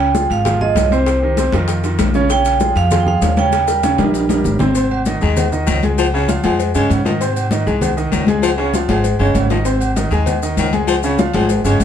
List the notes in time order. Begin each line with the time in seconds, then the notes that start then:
Already playing: C#2 G5
0.00 high conga, high timbale
0.15 F3 F4 G#4, high bongo, high conga, low timbale, maracas
0.30 G#1 F5, high timbale, maracas
0.45 F3 F4 G#4, high bongo, high conga, low conga, high timbale, maracas
0.61 F3 F4 G#4 D#5, high conga, low conga
0.75 C2, high bongo, low bongo, high conga, high timbale, low timbale, maracas
0.91 C3 C4 C5, high conga, high timbale, maracas
1.06 high bongo, high timbale, maracas
1.22 D#3 D#4 G4, high conga
1.37 C3 C4 C5, high bongo, high conga, high timbale, low timbale, maracas
1.52 F2 D#3 D#4 F4, high bongo, high conga, high timbale, maracas
1.68 high bongo, high conga, maracas
1.83 D#3 D#4 F4, high bongo, high conga, high timbale, maracas
1.99 A#1, high bongo, low bongo, high conga, high timbale, low timbale, maracas
2.14 C#3 C#4 C#5, high bongo, high conga, maracas
2.29 C#3 C#4 C#5 G5, high bongo, high conga, high timbale, maracas
2.45 high conga, high timbale, maracas
2.60 F3 F4 G#4, high bongo, high conga, low timbale, maracas
2.75 F2 F5, high timbale, maracas
2.91 F3 F4 G#4, high bongo, high conga, low conga, high timbale, maracas
3.00 G5
3.06 F3 F4 G#4 F5, high conga, low conga
3.22 D#2, high bongo, low bongo, high conga, high timbale, low timbale, maracas
3.37 C#3 C#4 C#5 G5, high conga, high timbale, maracas
3.52 high bongo, high conga, high timbale, maracas
3.67 G3 G4 A#4, high bongo, high conga, maracas
3.83 C#3 C#4 C#5, low bongo, high conga, high timbale, low timbale, maracas
3.98 A#1 G3 G4 A#4, low bongo, high conga, high timbale, maracas
4.14 high timbale, maracas
4.29 G3 G4 A#4, low bongo, high conga, high timbale, maracas
4.44 G#1, low bongo, low conga, low timbale, maracas
4.59 C3 C4 C5, low bongo, low conga, low timbale, maracas
4.75 C3 C4 C5, cowbell, high conga, low agogo, maracas
4.91 high conga, low agogo
5.05 D#3 D#4 D#5, cowbell, high conga, low timbale, low agogo, maracas
5.21 D#2 D#3 G#3 G#4 G#5, maracas
5.37 cowbell, high conga, low conga, low agogo, maracas
5.52 D#3 D#4 D#5, high conga, low conga, maracas
5.67 C#2 D#3, cowbell, high conga, low timbale, low agogo, maracas
5.83 G#3 G#4 G#5, cowbell, high conga, maracas
5.98 F3, cowbell, high conga, low agogo, maracas
6.13 C#3 C#4 C#5, high conga
6.29 F3 F4 F5, cowbell, high conga, low timbale, low agogo, maracas
6.44 F2 F3 G#3 G#4 G#5, cowbell, high conga, low agogo, maracas
6.59 cowbell, high conga, maracas
6.75 G2 C#3 G#3 C#4 C#5, high conga, low agogo, maracas
6.90 G#2, cowbell, high conga, low timbale, low agogo, maracas
7.05 D#3 F3 D#4 D#5, cowbell, high conga, maracas
7.20 C3 C4 C5, cowbell, high conga, low agogo, maracas
7.36 high conga, low agogo, maracas
7.51 D#3 D#4 D#5, cowbell, high conga, low timbale, low agogo, maracas
7.66 C2 D#3 G#3 G#4 G#5, maracas
7.81 cowbell, high conga, low conga, low agogo, maracas
7.97 D#3 D#4 D#5, high conga, maracas
8.12 C#2 D#3, cowbell, high conga, low timbale, low agogo, maracas
8.27 G#3 G#4 G#5, cowbell, high conga, maracas
8.42 F3, cowbell, high conga, low agogo, maracas
8.57 C#3 C#4 C#5, high conga
8.74 F3 F4 F5, cowbell, high conga, low timbale, low agogo, maracas
8.88 G#1 F3 G#3 G#4 G#5, cowbell, high conga, low agogo, maracas
9.04 cowbell, high conga, maracas
9.19 G1 C#3 G#3 C#4 C#5, high conga, low agogo
9.35 G#1, cowbell, high conga, low timbale, low agogo, maracas
9.50 D#3 F3 D#4 D#5, cowbell, high conga, maracas
9.65 C3 C4 C5, cowbell, high conga, low agogo, maracas
9.81 high conga, low agogo, maracas
9.96 D#3 D#4 D#5, cowbell, high conga, low timbale, low agogo, maracas
10.10 D#2 D#3 G#3 G#4 G#5, maracas
10.26 cowbell, high conga, low conga, low agogo, maracas
10.42 D#3 D#4 D#5, high conga, maracas
10.57 C#2 D#3, cowbell, high conga, low timbale, low agogo, maracas
10.73 G#3 G#4 G#5, cowbell, high conga, maracas
10.87 F3, cowbell, high conga, low agogo, maracas
11.03 C#3 C#4 C#5, high conga, maracas
11.18 F3 F4 F5, cowbell, high conga, low timbale, low agogo, maracas
11.34 G#1 F3 G#3 G#4 G#5, cowbell, high conga, low agogo, maracas
11.49 cowbell, maracas
11.64 G1 C#3 G#3 C#4 C#5, high conga, low agogo, maracas
11.80 G#1, cowbell, high conga, low timbale, low agogo, maracas